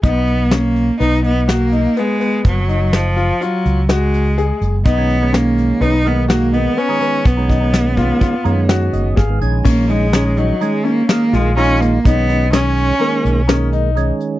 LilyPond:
<<
  \new Staff \with { instrumentName = "Grand piano" } { \time 5/4 \key b \lydian \tempo 4 = 125 dis'4 cis'4 b8 dis'8 fis'8 dis'8 b8 b8~ | b8 dis'4 eis'8 eis'4 fis'4 gis'4 | dis'4 cis'4 b8 dis'8 fis'8 dis'8 b8 b8~ | b8 dis'4 eis'8 eis'4 fis'4 gis'4 |
cis'8 dis'8 cis'8 dis'4 cis'4 eis'8 eis'4 | dis'8 dis'8 cis'4 ais4 cis'8 dis'4 r8 | }
  \new Staff \with { instrumentName = "Cello" } { \time 5/4 \key b \lydian b4 ais4 dis'8 b8 ais4 gis4 | fis4 eis4 fis4 gis4. r8 | b4 ais4 dis'8 b8 ais8 b8 cis'4 | b1 r4 |
ais8 gis4 fis8 gis8 ais8 ais8 gis8 cis'8 ais8 | b4 cis'2 r2 | }
  \new Staff \with { instrumentName = "Tonewheel organ" } { \time 5/4 \key b \lydian r1 r4 | r1 r4 | r1 r4 | r2. r8 dis''8 eis''8 gis''8 |
r1 r4 | r1 r4 | }
  \new Staff \with { instrumentName = "Tonewheel organ" } { \clef bass \time 5/4 \key b \lydian r1 r4 | r1 r4 | r16 <dis gis cis'>8 <dis gis cis'>4. r16 <dis gis ais>4. r16 <dis gis cis'>16 <dis gis cis'>8 | r16 <dis gis cis'>8 <dis gis cis'>4. r16 <dis gis cis'>4. r16 <dis gis b>16 <dis gis cis'>8 |
<dis gis cis'>4 <dis gis cis'>4 <dis gis cis'>4 <dis gis ais>4 <dis gis dis'>4 | <dis gis cis'>4 <dis gis cis'>4 <dis gis ais>4 <dis gis ais>4 <dis gis cis'>4 | }
  \new Staff \with { instrumentName = "Fretless electric bass" } { \clef bass \time 5/4 \key b \lydian b,,2 b,,2 r4 | fis,,2 r8 cis,2 fis,,8 | b,,2 b,,2 r4 | b,,2 r8 fis,4 fis,,8 gis,,8 ais,,8 |
ais,,2 r4. ais,,4. | b,,2 r8 b,,2 r8 | }
  \new DrumStaff \with { instrumentName = "Drums" } \drummode { \time 5/4 <hh bd>8 hh8 <hh sn>8 hh8 hh8 hh8 <hh sn>8 hh8 hh8 hh8 | <hh bd>8 hh8 <hh sn>8 hh8 hh8 hh8 <hh sn>8 hh8 hh8 hh8 | <hh bd>8 hh8 <hh sn>8 hh8 hh8 hh8 <hh sn>8 hh8 hh8 hh8 | <hh bd>8 <hh bd>8 <hh sn>8 <hh bd>8 <hh bd>8 hh8 <hh sn>8 hh8 <hh bd sn>8 hh8 |
<cymc bd>8 hh8 <hh sn>8 hh8 hh8 hh8 <hh sn>8 <hh sn>8 hh8 hh8 | <hh bd>8 hh8 <hh sn>8 hh8 hh8 hh8 <hh sn>8 hh8 hh8 hh8 | }
>>